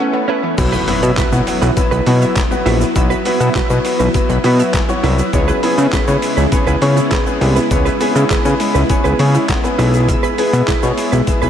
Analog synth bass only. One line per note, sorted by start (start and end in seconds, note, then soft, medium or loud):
0.58 0.76 B1 loud
1.03 1.12 B2 loud
1.18 1.24 B2 soft
1.32 1.41 B2 medium
1.62 1.71 B1 loud
1.92 2.01 B1 loud
2.07 2.25 B2 loud
2.66 2.84 A#1 medium
2.96 3.14 B1 loud
3.40 3.49 B2 loud
3.55 3.61 B2 medium
3.70 3.79 B2 loud
4.00 4.09 B1 loud
4.29 4.38 B1 loud
4.44 4.62 B2 loud
5.03 5.22 C2 loud
5.33 5.52 C#2 loud
5.78 5.87 C#3 loud
5.93 5.99 C#3 medium
6.08 6.17 C#3 medium
6.37 6.46 C#2 loud
6.67 6.76 C#2 loud
6.82 7.00 C#3 loud
7.41 7.59 C2 loud
7.71 7.89 C#2 loud
8.15 8.25 C#3 medium
8.31 8.36 C#3 medium
8.45 8.54 C#3 loud
8.75 8.84 C#2 loud
9.04 9.14 C#2 medium
9.19 9.38 C#3 loud
9.79 10.15 B1 loud
10.53 10.62 B2 loud
10.68 10.74 B2 soft
10.83 10.92 B2 medium
11.13 11.22 B1 medium
11.42 11.50 B1 medium